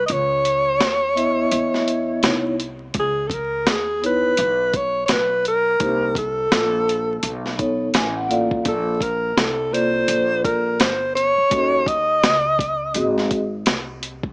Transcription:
0.06 0.81 C#2 loud
0.06 0.14 D#5 medium
0.06 closed hi-hat medium
0.12 2.60 C#5 loud
0.45 closed hi-hat medium
0.81 1.48 D#2 medium
0.81 snare loud
0.81 closed hi-hat medium
1.15 2.17 B3 medium
1.15 2.18 E4 medium
1.15 2.17 D#5 medium
1.15 2.18 E5 medium
1.15 closed hi-hat medium
1.52 2.20 E2 loud
1.52 closed hi-hat medium
1.74 snare soft
1.88 closed hi-hat medium
2.23 2.91 C2 medium
2.23 2.50 B3 medium
2.23 2.51 D#4 medium
2.23 2.51 E4 medium
2.23 2.51 C#5 medium
2.23 snare loud
2.23 closed hi-hat medium
2.60 closed hi-hat medium
2.94 3.67 C#2 loud
2.94 kick medium
2.94 closed hi-hat medium
3.00 3.29 G#4 medium
3.27 3.36 A4 medium
3.27 kick medium
3.27 closed hi-hat medium
3.34 3.72 A#4 medium
3.67 4.34 D#2 loud
3.67 snare loud
3.67 closed hi-hat medium
3.71 4.04 G#4 medium
4.01 4.29 B3 medium
4.01 4.30 D#4 medium
4.01 4.30 E4 medium
4.01 4.30 C#5 medium
4.01 closed hi-hat medium
4.06 4.78 B4 loud
4.37 5.06 B1 loud
4.37 closed hi-hat medium
4.74 5.05 C#5 loud
4.74 kick medium
4.74 closed hi-hat medium
5.06 5.77 B1 medium
5.06 5.14 C#5 medium
5.06 snare medium
5.06 closed hi-hat medium
5.12 5.46 B4 loud
5.45 6.14 A#4 loud
5.45 closed hi-hat medium
5.79 6.48 C2 loud
5.79 6.07 A#3 medium
5.79 6.07 D#4 medium
5.79 6.08 G4 medium
5.79 6.08 C5 medium
5.79 kick loud
5.79 closed hi-hat medium
6.15 7.56 A4 loud
6.15 kick medium
6.15 closed hi-hat medium
6.52 7.20 A#1 loud
6.52 snare loud
6.52 closed hi-hat medium
6.89 closed hi-hat medium
7.23 7.91 B1 medium
7.23 closed hi-hat medium
7.46 snare soft
7.58 7.86 B3 medium
7.58 7.86 D#4 medium
7.58 7.87 A4 medium
7.58 7.87 C#5 medium
7.58 kick medium
7.58 closed hi-hat medium
7.94 8.63 A1 medium
7.94 8.15 G#5 medium
7.94 snare loud
7.94 closed hi-hat medium
8.16 8.29 F#5 medium
8.28 8.57 A#3 medium
8.28 8.57 F4 medium
8.28 8.58 A4 medium
8.28 8.58 D5 medium
8.28 8.63 F5 medium
8.28 closed hi-hat medium
8.51 kick medium
8.64 9.34 A#1 loud
8.64 8.93 A#3 medium
8.64 8.93 F4 medium
8.64 8.93 A4 medium
8.64 8.94 D5 medium
8.64 kick loud
8.64 closed hi-hat medium
8.68 9.04 A4 medium
9.01 9.38 A#4 medium
9.01 kick medium
9.01 closed hi-hat medium
9.37 10.05 C2 loud
9.37 9.75 A4 medium
9.37 snare loud
9.37 closed hi-hat medium
9.71 10.74 A#3 medium
9.71 10.74 F4 medium
9.71 10.75 A4 medium
9.71 10.44 C5 loud
9.71 10.75 D5 medium
9.71 closed hi-hat medium
10.08 10.76 A#1 medium
10.08 closed hi-hat medium
10.45 10.83 A#4 medium
10.45 kick medium
10.45 closed hi-hat medium
10.80 11.35 G1 medium
10.80 11.15 C5 loud
10.80 snare loud
10.80 closed hi-hat medium
11.15 11.89 C#5 loud
11.15 closed hi-hat medium
11.38 muted upright bass stroke soft
11.50 12.20 D#2 loud
11.50 11.78 C#4 medium
11.50 11.79 F#4 medium
11.50 11.79 A4 medium
11.50 11.80 D#5 medium
11.50 kick loud
11.50 closed hi-hat medium
11.86 13.30 D#5 loud
11.86 kick loud
11.86 closed hi-hat medium
12.23 12.97 C#2 medium
12.23 snare loud
12.23 closed hi-hat medium
12.59 kick loud
12.59 closed hi-hat medium
12.94 13.63 G#1 loud
12.94 13.39 C4 medium
12.94 13.39 F#4 medium
12.94 13.39 G#4 medium
12.94 13.40 D#5 medium
12.94 closed hi-hat loud
13.18 snare soft
13.31 kick medium
13.31 closed hi-hat medium
13.66 14.33 C2 medium
13.66 snare loud
13.66 closed hi-hat medium
14.03 closed hi-hat medium
14.23 kick loud

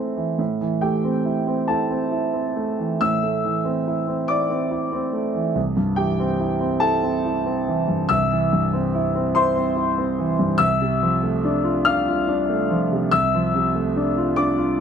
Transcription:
0.00 0.35 A2 soft
0.00 0.41 A3 soft
0.00 0.41 C4 soft
0.00 0.41 E4 soft
0.17 0.38 E3 soft
0.39 2.98 A2 soft
0.61 0.95 E3 soft
0.81 1.17 A3 soft
0.81 1.64 G4 soft
0.81 1.68 G5 medium
1.04 1.38 C4 soft
1.25 1.59 E4 soft
1.47 1.81 C4 soft
1.68 2.03 E4 soft
1.68 2.98 A4 soft
1.68 3.02 A5 medium
1.90 2.26 C4 soft
2.11 2.48 E4 soft
2.33 2.70 C4 soft
2.56 2.93 A3 soft
2.79 3.15 E3 soft
3.01 5.51 A2 soft
3.01 4.25 E5 medium
3.01 4.29 E6 medium
3.23 3.57 A3 soft
3.45 3.79 E3 soft
3.65 3.99 C4 soft
3.87 4.21 E4 soft
4.07 4.41 C4 soft
4.28 4.63 E4 soft
4.28 5.52 D5 medium
4.28 5.55 D6 medium
4.50 4.84 C4 soft
4.71 5.05 E4 soft
4.92 5.26 C4 soft
5.13 5.47 A3 soft
5.35 5.55 E3 soft
5.55 8.07 C2 soft
5.77 6.10 G2 soft
5.96 6.31 E3 soft
5.96 6.78 G4 soft
5.96 6.81 G5 medium
6.20 6.53 C4 soft
6.40 6.73 E4 soft
6.61 6.94 C4 soft
6.80 7.15 E4 soft
6.80 8.07 A4 medium
6.80 8.10 A5 medium
7.03 7.37 C4 soft
7.25 7.60 E4 soft
7.46 7.81 C4 soft
7.67 8.02 E3 soft
7.88 8.23 G2 soft
8.09 10.55 C2 medium
8.09 9.31 E5 medium
8.09 9.35 E6 medium
8.31 8.65 E3 soft
8.53 8.86 G2 soft
8.73 9.07 C4 soft
8.94 9.28 E4 soft
9.15 9.48 C4 soft
9.35 9.69 E4 medium
9.35 10.55 C5 medium
9.35 10.59 C6 medium
9.56 9.89 C4 soft
9.76 10.10 E4 soft
9.98 10.31 C4 soft
10.19 10.51 E3 soft
10.39 10.60 G2 soft
10.58 13.07 C2 medium
10.58 11.81 E5 medium
10.58 11.84 E6 loud
10.81 11.14 C3 soft
11.02 11.35 F3 soft
11.23 11.56 A3 soft
11.44 11.77 D4 medium
11.64 11.98 F4 soft
11.85 12.19 D4 medium
11.85 13.08 F5 medium
11.85 13.11 F6 medium
12.08 12.41 F4 soft
12.28 12.61 D4 medium
12.49 12.82 A3 soft
12.70 13.04 F3 soft
12.92 13.25 C3 soft
13.11 14.80 C2 medium
13.11 14.33 E5 medium
13.11 14.36 E6 medium
13.34 13.67 F3 soft
13.55 13.87 C3 soft
13.75 14.08 A3 soft
13.96 14.29 D4 soft
14.17 14.50 F4 soft
14.36 14.70 D4 medium
14.36 14.80 D5 medium
14.36 14.80 D6 medium
14.57 14.80 F4 soft

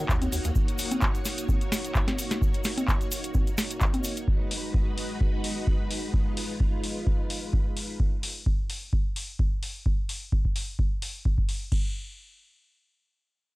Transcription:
0.00 4.24 A#3 medium
0.00 0.56 D#4 medium
0.00 4.24 D#4 medium
0.00 4.24 F#4 medium
0.00 0.56 C#5 loud
0.00 4.24 C#5 medium
0.00 0.56 F#5 medium
0.09 0.19 D#2 medium
0.09 kick loud
0.09 clap loud
0.09 cabasa medium
0.22 0.28 D#2 medium
0.22 closed hi-hat soft
0.22 high conga medium
0.22 cabasa soft
0.32 0.39 D#2 medium
0.32 open hi-hat medium
0.32 cabasa medium
0.44 0.51 D#2 loud
0.44 closed hi-hat medium
0.44 cabasa soft
0.55 kick loud
0.55 cabasa medium
0.68 closed hi-hat soft
0.68 cabasa soft
0.78 open hi-hat loud
0.78 cabasa medium
0.91 closed hi-hat medium
0.91 high conga medium
0.91 cabasa soft
1.01 kick loud
1.01 clap loud
1.01 cabasa medium
1.15 closed hi-hat soft
1.15 cabasa soft
1.25 snare soft
1.25 open hi-hat medium
1.25 cabasa loud
1.38 closed hi-hat medium
1.38 cabasa soft
1.49 kick loud
1.49 high conga soft
1.49 cabasa medium
1.61 closed hi-hat soft
1.61 cabasa soft
1.72 snare medium
1.72 open hi-hat loud
1.72 cabasa medium
1.85 closed hi-hat medium
1.85 cabasa soft
1.95 kick loud
1.95 clap loud
1.95 cabasa medium
2.08 snare medium
2.08 closed hi-hat soft
2.08 high conga medium
2.08 cabasa soft
2.18 open hi-hat medium
2.18 cabasa medium
2.31 snare medium
2.31 closed hi-hat medium
2.31 cabasa soft
2.42 kick loud
2.42 cabasa medium
2.54 closed hi-hat soft
2.54 cabasa soft
2.64 snare medium
2.64 open hi-hat loud
2.64 cabasa medium
2.78 closed hi-hat medium
2.78 high conga medium
2.78 cabasa soft
2.88 kick loud
2.88 clap loud
2.88 cabasa medium
3.01 closed hi-hat soft
3.01 cabasa soft
3.12 open hi-hat medium
3.12 cabasa loud
3.24 closed hi-hat medium
3.24 cabasa soft
3.34 kick loud
3.34 high conga soft
3.34 cabasa soft
3.47 closed hi-hat soft
3.47 cabasa soft
3.58 snare medium
3.58 open hi-hat loud
3.58 cabasa medium
3.71 closed hi-hat medium
3.71 cabasa soft
3.81 kick loud
3.81 clap loud
3.81 cabasa soft
3.94 closed hi-hat soft
3.94 high conga medium
3.94 cabasa soft
4.04 open hi-hat medium
4.04 cabasa medium
4.17 closed hi-hat medium
4.17 cabasa soft
4.28 7.96 G#3 medium
4.28 7.96 D#4 medium
4.28 6.12 F#4 medium
4.28 7.96 B4 medium
4.28 kick loud
4.51 open hi-hat loud
4.74 kick loud
4.98 open hi-hat medium
5.21 kick loud
5.44 open hi-hat loud
5.67 kick loud
5.91 open hi-hat medium
6.14 7.98 F4 medium
6.14 kick loud
6.37 open hi-hat medium
6.60 kick loud
6.84 open hi-hat medium
7.07 kick loud
7.30 open hi-hat medium
7.53 kick loud
7.77 open hi-hat medium
8.00 kick loud
8.23 open hi-hat medium
8.46 kick loud
8.70 open hi-hat medium
8.93 kick loud
9.16 open hi-hat medium
9.39 kick loud
9.63 open hi-hat medium
9.86 kick loud
10.09 open hi-hat medium
10.32 kick loud
10.45 kick medium
10.56 open hi-hat medium
10.79 kick loud
11.02 open hi-hat medium
11.25 kick loud
11.38 kick medium
11.49 open hi-hat medium
11.72 kick loud
11.72 crash medium

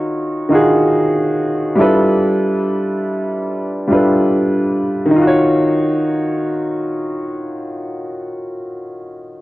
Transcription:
0.00 0.49 D#3 medium
0.00 0.50 D#4 medium
0.00 0.51 F4 medium
0.00 0.53 F#4 medium
0.00 1.78 C#5 medium
0.49 1.51 D#3 medium
0.49 1.52 D#4 medium
0.49 1.52 F4 medium
0.53 1.53 F#4 medium
0.53 1.54 G#4 medium
1.76 3.09 G3 medium
1.76 3.10 D4 medium
1.76 3.10 E4 medium
1.76 3.11 F4 medium
1.80 3.12 A4 medium
1.80 3.12 B4 medium
3.87 4.89 G3 medium
3.87 4.90 D4 medium
3.87 4.90 E4 medium
3.87 4.91 F4 medium
3.92 4.91 A4 medium
3.92 4.92 B4 medium
5.05 8.05 D#3 medium
5.11 8.11 D#4 medium
5.16 8.16 F4 medium
5.22 8.22 F#4 medium
5.27 8.27 C#5 medium

